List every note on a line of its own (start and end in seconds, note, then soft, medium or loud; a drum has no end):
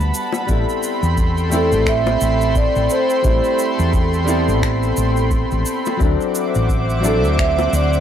0.00 0.10 D2 medium
0.00 0.44 G3 medium
0.00 0.46 G3 medium
0.00 0.45 B3 medium
0.00 0.45 D4 medium
0.00 0.46 F#4 medium
0.00 0.47 A4 loud
0.00 0.44 F#5 medium
0.00 0.46 A5 medium
0.00 5.97 B5 medium
0.00 shaker soft
0.14 shaker medium
0.33 high bongo medium
0.33 shaker soft
0.47 0.64 A1 medium
0.47 1.48 G3 medium
0.47 1.48 B3 medium
0.47 1.49 C4 medium
0.47 1.50 E4 medium
0.47 5.97 A4 medium
0.47 5.96 G5 medium
0.47 5.96 C6 medium
0.47 kick loud
0.47 shaker soft
0.51 1.50 A4 medium
0.69 shaker soft
0.83 shaker medium
1.03 1.73 E2 medium
1.03 shaker soft
1.18 kick loud
1.18 shaker soft
1.38 shaker soft
1.50 3.20 G3 loud
1.50 3.20 A3 medium
1.50 3.21 C4 medium
1.50 3.22 E4 medium
1.50 shaker medium
1.54 3.22 A4 loud
1.54 1.86 A4 medium
1.72 2.15 A1 medium
1.72 shaker soft
1.87 2.53 E5 loud
1.87 finger snap medium
1.87 kick loud
1.87 shaker soft
2.07 high bongo medium
2.07 shaker soft
2.21 2.67 A1 medium
2.21 shaker medium
2.41 shaker soft
2.56 2.92 D5 loud
2.56 kick loud
2.56 shaker soft
2.76 2.86 A1 medium
2.76 shaker soft
2.90 3.56 C5 medium
2.90 shaker medium
3.10 shaker soft
3.22 3.39 A1 medium
3.22 4.23 G3 medium
3.22 4.24 A3 medium
3.22 4.25 C4 medium
3.22 4.25 E4 medium
3.22 kick loud
3.22 shaker soft
3.27 4.26 A4 medium
3.44 shaker soft
3.59 shaker medium
3.79 4.50 E2 medium
3.79 shaker soft
3.94 kick loud
3.94 shaker soft
4.13 shaker soft
4.24 5.95 G3 loud
4.24 5.96 B3 medium
4.24 5.97 C4 loud
4.24 shaker medium
4.28 5.97 E4 medium
4.28 5.98 A4 loud
4.48 4.91 A1 medium
4.48 shaker soft
4.63 finger snap medium
4.63 kick medium
4.63 shaker soft
4.83 shaker soft
4.97 5.43 A1 medium
4.97 shaker medium
5.17 shaker soft
5.31 kick loud
5.31 shaker soft
5.51 5.62 A1 medium
5.51 shaker soft
5.66 shaker medium
5.86 high bongo medium
5.86 shaker soft
5.97 6.15 D2 medium
5.97 6.99 F#3 medium
5.97 7.00 C4 medium
5.97 7.00 D4 medium
5.97 8.00 C5 medium
5.97 8.00 E5 medium
5.97 8.00 F#5 medium
5.97 8.00 D6 medium
5.97 kick loud
5.97 shaker soft
6.01 7.01 E4 medium
6.01 7.02 A4 medium
6.21 shaker soft
6.35 shaker medium
6.55 7.25 A1 medium
6.55 shaker soft
6.70 kick medium
6.70 shaker soft
6.90 shaker soft
7.00 8.00 F#3 loud
7.00 8.00 C4 loud
7.00 8.00 D4 medium
7.04 8.00 E4 medium
7.04 8.00 A4 loud
7.04 7.21 A4 medium
7.04 shaker medium
7.24 7.67 D2 medium
7.24 shaker soft
7.39 7.71 E5 loud
7.39 finger snap medium
7.39 kick loud
7.39 shaker soft
7.59 high bongo medium
7.59 shaker soft
7.73 8.00 D2 medium
7.73 8.00 D5 loud
7.73 shaker medium
7.93 shaker soft